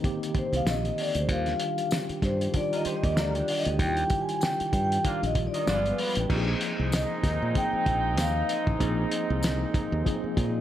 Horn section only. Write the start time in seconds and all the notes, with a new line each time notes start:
5.05 A#3 D4 F4
5.68 B3 D4 F4
6.30 G#3 C4 D#4